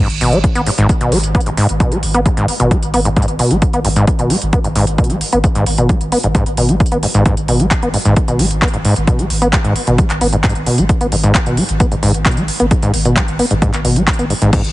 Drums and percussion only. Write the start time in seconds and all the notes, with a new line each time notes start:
0.10 closed hi-hat
0.21 open hi-hat
0.33 closed hi-hat
0.44 kick, closed hi-hat
0.55 closed hi-hat
0.67 open hi-hat
0.78 closed hi-hat
0.89 kick, closed hi-hat
1.01 closed hi-hat
1.12 open hi-hat
1.24 closed hi-hat
1.35 kick, closed hi-hat
1.41 closed hi-hat
1.46 closed hi-hat
1.57 open hi-hat
1.69 closed hi-hat
1.80 kick, closed hi-hat
1.92 closed hi-hat
2.03 open hi-hat
2.14 closed hi-hat
2.26 kick, closed hi-hat
2.37 closed hi-hat
2.48 open hi-hat
2.60 closed hi-hat
2.71 kick, closed hi-hat
2.83 closed hi-hat
2.94 open hi-hat
3.05 closed hi-hat
3.16 kick, closed hi-hat
3.22 closed hi-hat
3.28 closed hi-hat
3.39 open hi-hat
3.51 closed hi-hat
3.62 kick, closed hi-hat
3.73 closed hi-hat
3.85 open hi-hat
3.96 closed hi-hat
4.07 kick, closed hi-hat
4.19 closed hi-hat
4.30 open hi-hat
4.42 closed hi-hat
4.53 kick, closed hi-hat
4.64 closed hi-hat
4.76 open hi-hat
4.87 closed hi-hat
4.98 kick, closed hi-hat
5.04 closed hi-hat
5.10 closed hi-hat
5.21 open hi-hat
5.33 closed hi-hat
5.44 kick, closed hi-hat
5.55 closed hi-hat
5.66 open hi-hat
5.78 closed hi-hat
5.89 kick, closed hi-hat
6.01 closed hi-hat
6.12 open hi-hat
6.24 closed hi-hat
6.35 kick, closed hi-hat
6.46 closed hi-hat
6.57 open hi-hat
6.69 closed hi-hat
6.80 kick, closed hi-hat
6.86 closed hi-hat
6.92 closed hi-hat
7.03 open hi-hat
7.14 closed hi-hat
7.26 kick, closed hi-hat
7.37 closed hi-hat
7.48 open hi-hat
7.60 closed hi-hat
7.71 kick, clap, closed hi-hat
7.83 closed hi-hat
7.94 open hi-hat
8.05 closed hi-hat
8.16 kick, closed hi-hat
8.28 closed hi-hat
8.39 open hi-hat
8.51 closed hi-hat
8.62 kick, clap, closed hi-hat
8.68 closed hi-hat
8.73 closed hi-hat
8.85 open hi-hat
8.96 closed hi-hat
9.07 kick, closed hi-hat
9.19 closed hi-hat
9.30 open hi-hat
9.42 closed hi-hat
9.53 kick, clap, closed hi-hat
9.65 closed hi-hat
9.76 open hi-hat
9.87 closed hi-hat
9.98 kick, closed hi-hat
10.10 clap, closed hi-hat
10.21 open hi-hat
10.33 closed hi-hat
10.44 kick, clap, closed hi-hat
10.50 closed hi-hat
10.55 closed hi-hat
10.66 open hi-hat
10.78 closed hi-hat
10.89 kick, closed hi-hat
11.01 closed hi-hat
11.12 open hi-hat
11.24 closed hi-hat
11.35 kick, clap, closed hi-hat
11.46 closed hi-hat
11.57 open hi-hat
11.69 closed hi-hat
11.80 kick, closed hi-hat
11.92 closed hi-hat
12.03 open hi-hat
12.14 closed hi-hat
12.26 kick, clap, closed hi-hat
12.31 closed hi-hat
12.37 closed hi-hat
12.48 open hi-hat
12.60 closed hi-hat
12.71 kick, closed hi-hat
12.83 closed hi-hat
12.94 open hi-hat
13.05 closed hi-hat
13.16 kick, clap, closed hi-hat
13.28 closed hi-hat
13.39 open hi-hat
13.51 closed hi-hat
13.62 kick, closed hi-hat
13.74 clap, closed hi-hat
13.85 open hi-hat
13.96 closed hi-hat
14.07 kick, clap, closed hi-hat
14.13 closed hi-hat
14.19 closed hi-hat
14.30 open hi-hat
14.42 closed hi-hat
14.53 kick, closed hi-hat, crash
14.64 closed hi-hat